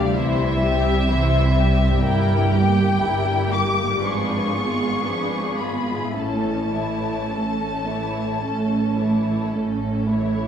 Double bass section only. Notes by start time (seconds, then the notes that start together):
0.15 C2
1.12 C2
2.06 G1
3.02 G1
4.03 G#1
5.05 G#1
6.15 A1
7.30 A1
8.42 A1
9.51 A1